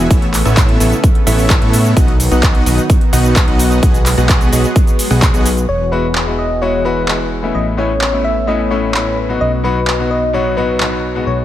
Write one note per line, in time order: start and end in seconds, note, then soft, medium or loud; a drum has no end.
0.00 3.79 B3 medium
0.11 1.95 C#3 medium
0.11 1.95 A3 medium
0.11 0.26 B3 medium
0.11 0.26 E4 medium
0.11 0.26 A4 medium
0.11 0.26 C#5 medium
0.11 0.26 E5 medium
0.11 kick loud
0.11 closed hi-hat medium
0.11 cabasa soft
0.22 closed hi-hat soft
0.34 clap medium
0.34 open hi-hat loud
0.34 cabasa medium
0.45 0.78 A1 loud
0.45 0.78 B3 medium
0.45 0.78 E4 medium
0.45 0.78 A4 medium
0.45 0.78 C#5 medium
0.45 0.78 E5 loud
0.45 cabasa soft
0.57 kick loud
0.57 clap loud
0.57 closed hi-hat medium
0.57 cabasa soft
0.69 closed hi-hat soft
0.80 0.93 A1 medium
0.80 0.96 B3 medium
0.80 0.96 E4 medium
0.80 0.96 A4 medium
0.80 0.96 C#5 medium
0.80 0.96 E5 loud
0.80 open hi-hat loud
0.80 cabasa medium
0.92 closed hi-hat soft
0.92 cabasa soft
1.04 kick loud
1.04 closed hi-hat medium
1.04 cabasa soft
1.15 closed hi-hat soft
1.27 1.59 A1 loud
1.27 1.59 B3 loud
1.27 1.59 E4 medium
1.27 1.59 A4 medium
1.27 1.59 C#5 medium
1.27 1.59 E5 loud
1.27 open hi-hat loud
1.27 cabasa medium
1.39 open hi-hat medium
1.39 cabasa soft
1.50 kick loud
1.50 clap loud
1.50 closed hi-hat medium
1.50 cabasa soft
1.62 1.94 A2 loud
1.62 1.94 B3 medium
1.62 1.94 E4 medium
1.62 1.94 A4 medium
1.62 1.94 C#5 medium
1.62 1.94 E5 loud
1.62 closed hi-hat soft
1.73 open hi-hat loud
1.73 cabasa medium
1.85 closed hi-hat soft
1.85 cabasa soft
1.96 2.29 B1 loud
1.96 3.81 D#3 medium
1.96 5.65 F#3 medium
1.96 2.12 B3 medium
1.96 2.12 D#4 medium
1.96 2.12 F#4 medium
1.96 2.12 D#5 medium
1.96 2.12 F#5 medium
1.96 kick loud
1.96 closed hi-hat loud
1.96 cabasa soft
2.08 closed hi-hat soft
2.20 open hi-hat loud
2.20 cabasa medium
2.31 2.64 B1 loud
2.31 2.64 B3 medium
2.31 2.64 D#4 medium
2.31 2.64 F#4 medium
2.31 2.64 D#5 medium
2.31 2.64 F#5 medium
2.31 closed hi-hat soft
2.31 cabasa soft
2.43 kick loud
2.43 clap loud
2.43 closed hi-hat medium
2.43 cabasa soft
2.55 closed hi-hat soft
2.66 2.79 B1 medium
2.66 2.82 B3 medium
2.66 2.82 D#4 medium
2.66 2.82 F#4 medium
2.66 2.82 D#5 medium
2.66 2.82 F#5 loud
2.66 open hi-hat loud
2.66 cabasa medium
2.78 closed hi-hat soft
2.78 cabasa soft
2.90 kick loud
2.90 closed hi-hat loud
2.90 cabasa soft
3.01 closed hi-hat soft
3.13 3.46 B1 medium
3.13 3.45 B3 loud
3.13 3.45 D#4 medium
3.13 3.45 F#4 medium
3.13 3.45 D#5 medium
3.13 3.45 F#5 loud
3.13 open hi-hat loud
3.13 cabasa medium
3.25 closed hi-hat soft
3.25 cabasa soft
3.36 kick loud
3.36 clap loud
3.36 closed hi-hat loud
3.36 cabasa soft
3.48 3.80 B1 medium
3.48 3.80 B3 medium
3.48 3.80 D#4 medium
3.48 3.80 F#4 medium
3.48 3.80 D#5 medium
3.48 3.80 F#5 loud
3.48 closed hi-hat soft
3.59 open hi-hat loud
3.59 cabasa medium
3.71 closed hi-hat soft
3.71 cabasa soft
3.83 5.67 G#3 medium
3.83 5.67 B3 loud
3.83 3.98 B3 medium
3.83 3.98 F#4 medium
3.83 3.98 G#4 medium
3.83 3.98 D#5 medium
3.83 3.98 F#5 medium
3.83 kick loud
3.83 closed hi-hat loud
3.83 cabasa soft
3.94 closed hi-hat soft
3.94 cabasa soft
4.06 clap medium
4.06 open hi-hat loud
4.06 cabasa medium
4.18 4.50 B1 medium
4.18 4.50 B3 medium
4.18 4.50 F#4 medium
4.18 4.50 G#4 medium
4.18 4.50 D#5 medium
4.18 4.50 F#5 medium
4.18 closed hi-hat soft
4.18 cabasa soft
4.29 kick loud
4.29 clap loud
4.29 closed hi-hat medium
4.29 cabasa soft
4.41 closed hi-hat soft
4.41 cabasa soft
4.52 4.66 B1 medium
4.52 4.68 B3 medium
4.52 4.68 F#4 medium
4.52 4.68 G#4 medium
4.52 4.68 D#5 medium
4.52 4.68 F#5 loud
4.52 open hi-hat loud
4.52 cabasa medium
4.64 closed hi-hat soft
4.64 cabasa soft
4.76 kick loud
4.76 closed hi-hat loud
4.76 cabasa soft
4.87 closed hi-hat soft
4.87 cabasa soft
4.99 open hi-hat loud
4.99 cabasa medium
5.11 5.32 B1 loud
5.11 5.26 B3 medium
5.11 5.26 F#4 medium
5.11 5.26 G#4 medium
5.11 5.26 D#5 medium
5.11 5.26 F#5 medium
5.11 open hi-hat medium
5.11 cabasa soft
5.22 kick loud
5.22 clap loud
5.22 closed hi-hat loud
5.22 cabasa soft
5.34 5.66 B1 loud
5.34 5.49 B3 medium
5.34 5.49 F#4 medium
5.34 5.49 G#4 medium
5.34 5.49 D#5 medium
5.34 5.49 F#5 medium
5.34 closed hi-hat soft
5.34 cabasa soft
5.46 open hi-hat loud
5.46 cabasa medium
5.57 closed hi-hat soft
5.57 cabasa soft
5.69 7.53 E1 medium
5.69 7.53 E3 medium
5.69 11.45 B3 medium
5.69 7.53 F#4 medium
5.69 7.53 G#4 medium
5.69 5.93 C#5 loud
5.92 6.05 G#3 medium
5.92 6.05 B3 medium
5.92 6.05 E4 medium
5.92 6.05 F#4 loud
5.92 6.38 B4 medium
6.15 clap loud
6.26 6.47 G#3 medium
6.26 6.48 B3 medium
6.26 6.48 E4 medium
6.26 6.48 F#4 medium
6.39 6.63 D#5 loud
6.61 6.82 G#3 medium
6.61 6.82 B3 medium
6.61 6.83 E4 medium
6.61 6.83 F#4 loud
6.61 6.87 C#5 loud
6.85 7.05 G#3 medium
6.85 7.05 B3 medium
6.85 7.06 E4 medium
6.85 7.06 F#4 loud
6.85 7.32 B4 medium
7.08 7.40 G#3 medium
7.08 7.40 B3 medium
7.08 7.41 E4 medium
7.08 7.41 F#4 medium
7.08 clap loud
7.43 7.75 A2 medium
7.43 7.75 A3 medium
7.43 7.75 B3 medium
7.43 7.76 C#4 medium
7.43 7.76 E4 medium
7.55 9.39 A1 medium
7.55 9.39 A3 medium
7.55 9.39 C#4 medium
7.55 7.65 D#5 loud
7.77 7.91 A2 medium
7.77 7.91 A3 medium
7.77 7.91 B3 medium
7.77 7.91 C#4 medium
7.77 7.91 E4 loud
7.77 8.26 C#5 loud
8.01 clap loud
8.12 8.33 A2 medium
8.12 8.34 A3 medium
8.12 8.34 B3 medium
8.12 8.34 C#4 medium
8.12 8.34 E4 medium
8.24 8.49 E5 loud
8.47 8.68 A2 medium
8.47 8.68 A3 medium
8.47 8.68 B3 medium
8.47 8.68 C#4 medium
8.47 8.69 E4 loud
8.47 8.73 D#5 loud
8.71 8.91 A2 medium
8.71 8.91 A3 medium
8.71 8.92 B3 medium
8.71 8.92 C#4 medium
8.71 8.92 E4 loud
8.71 9.18 C#5 medium
8.94 9.26 A2 medium
8.94 9.26 A3 medium
8.94 9.27 B3 medium
8.94 9.27 C#4 medium
8.94 9.27 E4 medium
8.94 clap loud
9.29 9.61 B2 medium
9.29 9.61 F#3 medium
9.29 9.61 B3 medium
9.29 9.62 D#4 medium
9.29 9.62 F#4 medium
9.41 11.25 B1 medium
9.41 11.25 F#3 medium
9.41 11.25 D#4 medium
9.41 9.51 D#5 loud
9.64 9.77 B2 medium
9.64 9.77 F#3 medium
9.64 9.77 B3 medium
9.64 9.77 D#4 medium
9.64 9.77 F#4 loud
9.64 10.12 B4 loud
9.87 clap loud
9.98 10.19 B2 medium
9.98 10.20 F#3 medium
9.98 10.20 B3 medium
9.98 10.20 D#4 medium
9.98 10.20 F#4 medium
10.11 10.33 D#5 loud
10.33 10.54 B2 medium
10.33 10.54 F#3 medium
10.33 10.54 B3 medium
10.33 10.55 D#4 medium
10.33 10.55 F#4 loud
10.33 10.59 C#5 medium
10.57 10.77 B2 medium
10.57 10.78 F#3 medium
10.57 10.78 B3 medium
10.57 10.78 D#4 medium
10.57 10.78 F#4 loud
10.57 11.04 B4 medium
10.80 11.12 B2 medium
10.80 11.12 F#3 medium
10.80 11.13 B3 medium
10.80 11.13 D#4 medium
10.80 11.13 F#4 medium
10.80 clap loud
11.15 11.45 B2 medium
11.15 11.45 G#3 medium
11.15 11.45 B3 medium
11.15 11.45 D#4 medium
11.15 11.45 F#4 medium
11.27 11.45 B1 medium
11.27 11.45 G#3 medium
11.27 11.45 F#4 medium
11.27 11.37 C#5 medium